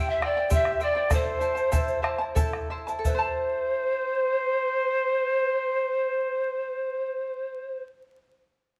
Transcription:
0.00 0.21 E4 medium
0.00 0.22 G4 medium
0.00 0.21 C5 medium
0.00 0.20 E5 medium
0.00 0.21 G5 medium
0.09 0.27 E5 medium
0.09 0.26 E5 medium
0.09 bombo rim soft
0.21 0.36 E4 medium
0.21 0.36 C5 medium
0.21 0.53 D5 loud
0.21 0.36 E5 medium
0.21 0.36 G5 medium
0.21 0.53 G5 medium
0.21 bombo rim medium
0.37 0.49 E4 soft
0.37 0.50 C5 medium
0.37 0.50 G5 medium
0.50 0.79 E4 medium
0.50 0.80 G4 medium
0.50 0.80 C5 medium
0.50 0.79 E5 medium
0.50 0.84 E5 medium
0.50 0.80 G5 medium
0.50 bombo low medium
0.50 shaker medium
0.65 bombo rim medium
0.80 0.95 E4 medium
0.80 0.95 C5 medium
0.80 1.15 D5 loud
0.80 1.15 D5 medium
0.80 0.95 E5 medium
0.80 0.94 G5 medium
0.80 shaker soft
0.95 1.10 E4 soft
0.95 1.10 C5 medium
0.95 1.09 G5 medium
1.10 1.39 E4 medium
1.10 1.40 A4 medium
1.10 1.40 C5 loud
1.10 2.38 C5 medium
1.10 1.39 E5 medium
1.10 1.40 A5 medium
1.10 bombo rim medium
1.10 bombo low medium
1.10 shaker loud
1.14 2.38 C5 medium
1.40 1.55 E4 medium
1.40 1.54 C5 medium
1.40 1.56 E5 medium
1.40 1.54 A5 medium
1.40 shaker soft
1.55 1.71 E4 soft
1.55 1.71 C5 soft
1.55 1.71 A5 medium
1.55 shaker soft
1.71 2.02 E4 medium
1.71 2.02 A4 medium
1.71 2.02 C5 medium
1.71 2.01 E5 medium
1.71 2.03 A5 medium
1.71 bombo rim soft
1.71 bombo low medium
1.71 shaker loud
1.88 shaker soft
2.02 2.19 E4 medium
2.02 2.18 C5 medium
2.02 2.19 E5 medium
2.02 2.17 A5 medium
2.02 bombo rim medium
2.18 2.35 E4 medium
2.18 2.35 C5 medium
2.18 2.36 A5 medium
2.35 2.69 E4 loud
2.35 2.70 A4 loud
2.35 2.70 C5 medium
2.35 2.69 E5 medium
2.35 2.70 A5 loud
2.35 bombo rim soft
2.35 bombo low medium
2.35 shaker loud
2.53 bombo rim medium
2.70 2.88 E4 medium
2.70 2.87 C5 medium
2.70 2.87 E5 medium
2.70 2.86 A5 medium
2.70 bombo rim soft
2.87 3.06 E4 soft
2.87 3.05 C5 medium
2.87 3.05 A5 medium
2.87 shaker soft
2.99 7.83 A4 medium
3.04 3.18 B4 medium
3.04 7.85 C5 loud
3.04 7.89 E5 medium
3.04 bombo low medium
3.04 shaker medium
3.10 7.93 E4 medium
3.15 7.98 C5 medium
3.15 7.84 C5 medium
3.15 8.02 A5 medium

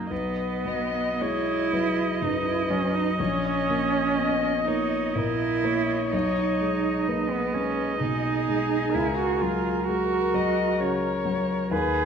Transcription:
0.00 0.13 F#2 soft
0.00 0.14 F#3 soft
0.00 0.12 A#3 medium
0.00 0.11 D#4 soft
0.11 3.15 B1 soft
0.11 1.23 B3 medium
0.11 0.68 B4 medium
0.11 6.10 D#5 medium
0.65 1.53 F#3 soft
0.65 1.23 D#5 medium
1.21 1.73 G#3 soft
1.21 2.23 E4 medium
1.21 1.75 C#5 medium
1.73 2.51 F#3 soft
1.73 2.22 B4 medium
2.22 2.99 F#2 soft
2.22 2.47 D#4 medium
2.22 3.17 B4 medium
2.45 2.72 E4 medium
2.70 3.19 F#3 soft
2.70 2.97 C#4 medium
2.95 3.21 D#4 medium
3.19 6.10 A#1 medium
3.19 4.66 C#4 medium
3.19 4.16 C#5 medium
3.70 4.47 A#3 soft
4.18 4.67 B3 soft
4.18 4.69 D#5 medium
4.66 5.45 A#3 soft
4.66 5.17 D#4 medium
4.66 5.18 C#5 medium
5.15 5.94 A#2 soft
5.15 6.13 E4 medium
5.15 5.66 A#4 medium
5.64 6.13 A#3 soft
5.64 7.09 C#5 medium
6.12 8.91 B1 medium
6.12 7.31 D#4 medium
6.12 8.91 D#5 medium
6.60 7.35 G#3 soft
7.07 7.54 A#3 soft
7.07 8.02 B4 soft
7.30 7.56 B3 medium
7.53 8.29 G#3 soft
7.53 8.00 C#4 medium
8.00 8.76 B2 soft
8.00 8.96 D#4 medium
8.00 9.87 G#4 medium
8.48 8.95 G#3 soft
8.94 11.68 C#2 medium
8.94 9.17 E4 medium
8.94 11.75 A#4 medium
9.17 9.43 F#4 medium
9.41 10.16 F#3 soft
9.41 9.87 F4 medium
9.87 10.34 G#3 soft
9.87 10.78 F#4 medium
9.87 10.35 A#4 medium
10.34 11.07 F#3 soft
10.34 10.82 D#5 medium
10.80 11.53 C#3 soft
10.80 11.72 C#5 medium
11.25 11.72 F#3 soft
11.71 12.05 D#2 medium
11.71 12.05 G#4 loud
11.71 12.05 B4 medium

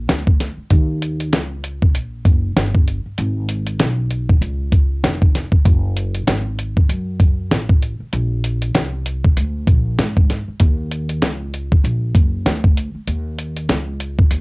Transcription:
0.08 0.55 D2 medium
0.08 snare loud
0.08 closed hi-hat medium
0.27 kick medium
0.40 snare soft
0.40 closed hi-hat medium
0.57 muted upright bass stroke soft
0.70 1.32 D#2 loud
0.70 kick loud
0.70 closed hi-hat medium
1.02 closed hi-hat medium
1.20 closed hi-hat medium
1.32 1.94 C#2 loud
1.32 snare loud
1.32 closed hi-hat medium
1.64 closed hi-hat medium
1.82 kick medium
1.94 2.24 A#1 loud
1.94 closed hi-hat loud
2.25 2.54 F#1 loud
2.25 kick medium
2.25 closed hi-hat medium
2.56 3.03 G1 medium
2.56 snare loud
2.56 closed hi-hat medium
2.75 kick medium
2.88 closed hi-hat medium
3.06 muted upright bass stroke medium
3.18 3.77 G#1 loud
3.18 closed hi-hat medium
3.49 closed hi-hat medium
3.67 closed hi-hat medium
3.80 4.39 B1 medium
3.80 snare loud
3.80 closed hi-hat medium
4.11 closed hi-hat medium
4.30 kick medium
4.41 5.00 C#2 loud
4.41 closed hi-hat medium
4.72 kick medium
4.72 closed hi-hat medium
5.03 5.50 F1 medium
5.03 snare loud
5.03 closed hi-hat medium
5.22 kick loud
5.35 snare soft
5.35 closed hi-hat medium
5.52 muted upright bass stroke soft
5.52 kick medium
5.65 6.24 F#1 loud
5.65 kick loud
5.65 closed hi-hat medium
5.97 closed hi-hat medium
6.15 closed hi-hat medium
6.27 6.86 G#1 medium
6.27 snare loud
6.27 closed hi-hat medium
6.59 closed hi-hat medium
6.77 kick medium
6.89 7.48 F#2 medium
6.89 closed hi-hat medium
7.20 kick loud
7.20 closed hi-hat medium
7.51 7.98 A1 medium
7.51 snare loud
7.51 closed hi-hat medium
7.69 kick medium
7.82 closed hi-hat medium
8.00 muted upright bass stroke soft
8.13 8.72 A#1 loud
8.13 closed hi-hat medium
8.44 closed hi-hat medium
8.62 closed hi-hat medium
8.75 9.34 C2 medium
8.75 snare loud
8.75 closed hi-hat medium
9.06 closed hi-hat medium
9.25 kick medium
9.37 9.66 D2 loud
9.37 closed hi-hat loud
9.67 9.97 A#1 medium
9.67 kick medium
9.67 closed hi-hat medium
9.99 10.45 G#2 medium
9.99 snare loud
9.99 closed hi-hat medium
10.17 kick loud
10.30 snare soft
10.30 closed hi-hat medium
10.48 muted upright bass stroke soft
10.60 11.19 D#2 loud
10.60 kick loud
10.60 closed hi-hat medium
10.91 closed hi-hat medium
11.09 closed hi-hat medium
11.22 11.81 C#2 loud
11.22 snare loud
11.22 closed hi-hat medium
11.54 closed hi-hat medium
11.72 kick medium
11.84 12.13 A#1 medium
11.84 closed hi-hat medium
12.15 12.44 F#1 medium
12.15 kick medium
12.15 closed hi-hat medium
12.46 12.92 D2 medium
12.46 snare medium
12.46 closed hi-hat medium
12.64 kick loud
12.77 closed hi-hat medium
12.95 muted upright bass stroke soft
13.07 13.66 D#2 loud
13.07 closed hi-hat medium
13.39 closed hi-hat medium
13.57 closed hi-hat medium
13.69 14.28 C#2 medium
13.69 snare loud
13.69 closed hi-hat medium
14.00 closed hi-hat medium
14.19 kick medium
14.31 14.41 D#2 medium
14.31 closed hi-hat medium

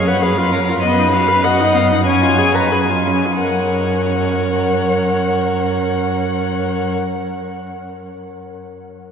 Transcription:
0.00 0.79 F#2 soft
0.00 0.24 C#5 medium
0.07 0.24 B4 soft
0.07 0.24 F#5 medium
0.22 0.39 G#4 soft
0.22 0.54 B4 soft
0.22 0.82 F5 medium
0.37 0.54 F4 soft
0.52 0.70 C#4 soft
0.52 0.83 A#4 soft
0.69 0.83 F4 soft
0.83 3.14 F#2 soft
0.83 1.00 B3 soft
0.83 1.45 B4 medium
0.83 1.13 D#5 medium
0.99 1.15 D#4 soft
1.14 1.30 F#4 soft
1.14 1.46 F5 medium
1.28 1.46 B4 soft
1.44 1.62 F#4 soft
1.44 2.05 D#5 medium
1.44 1.77 F#5 medium
1.60 1.76 D#4 soft
1.74 1.92 B3 soft
1.74 1.91 F5 medium
1.91 2.05 D#4 soft
1.91 2.06 F#5 medium
2.06 2.24 C#4 medium
2.06 2.70 C#5 medium
2.06 2.57 G#5 medium
2.22 2.40 F4 soft
2.38 2.56 G#4 soft
2.55 2.73 B4 soft
2.55 2.70 A#5 medium
2.71 2.91 G#4 soft
2.71 2.79 B4 soft
2.71 3.39 G#5 soft
2.90 3.09 F4 soft
3.07 3.27 C#4 soft
3.25 3.41 F4 soft
3.40 6.94 F#2 soft
3.40 6.94 A#4 soft
3.40 6.94 C#5 soft
3.40 6.93 F#5 soft

